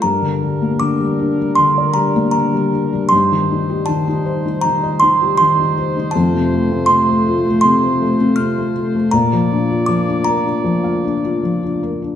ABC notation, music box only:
X:1
M:4/4
L:1/16
Q:1/4=79
K:Bb
V:1 name="Music box"
b4 d'4 c'2 b2 b3 z | c'4 a4 b2 c'2 c'3 z | a4 c'4 c'4 f'4 | b4 d'2 b8 z2 |]